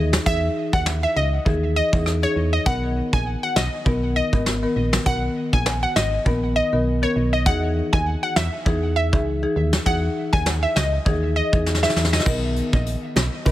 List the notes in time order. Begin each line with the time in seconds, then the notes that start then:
Already playing: D#2
0.13 snare
0.26 E2 E3 D#4 G#4 E5, kick
0.73 D#2 F#5, kick
0.86 snare
1.03 E5
1.16 C#2 D#5
1.46 D#2 E3 D#4 G#4, kick
1.76 D#5
1.93 E2 E3 D#4 G#4, kick
2.06 cross-stick
2.23 E3 D#4 G#4 C#5
2.36 E2
2.53 D#5
2.66 B1 D#3 B3 A#4 F#5, kick
3.13 A#1 G#5, kick
3.43 F#5
3.56 B1 D#5, snare
3.86 B1 D#3 B3 A#4, kick
4.16 D#5
4.32 G#1 D#3 B3 A#4, kick
4.46 snare
4.63 D#3 B3 A#4
4.76 A#1
4.93 snare
5.06 B1 D#3 B3 A#4 F#5, kick
5.53 A#1 G#5, kick
5.66 snare
5.83 F#5
5.96 G#1 D#5, snare
6.26 A#1 D#3 B3 A#4, kick
6.56 D#5
6.72 B1 D#3 B3 A#4
7.02 D#3 B3 A#4 C#5
7.16 B1
7.33 D#5
7.46 E2 E3 D#4 G#4 F#5, kick
7.93 D#2 G#5, kick
8.23 F#5
8.36 E2 E5, snare
8.66 E2 E3 D#4 G#4, kick
8.96 E5
9.12 C#2 E3 D#4 G#4, kick
9.43 E3 D#4 G#4
9.56 D#2
9.73 snare
9.86 E2 E3 D#4 G#4 F#5, kick
10.33 D#2 G#5, kick
10.46 snare
10.63 E5
10.76 C#2 D#5, snare
11.06 D#2 E3 D#4 G#4, kick
11.36 D#5
11.53 E2 E3 D#4 G#4, kick
11.66 snare
11.75 snare
11.82 E3 D#4 G#4 E5, snare
11.90 snare
11.96 E2, snare
12.05 snare
12.13 D#5, snare
12.20 snare
12.26 B1 D#3 B3 A#4, kick, crash, high bongo
12.56 closed hi-hat
12.73 A#1, kick
12.86 closed hi-hat
13.16 B1, snare, closed hi-hat, low bongo
13.46 B1 D#3 B3 A#4, kick, closed hi-hat, high bongo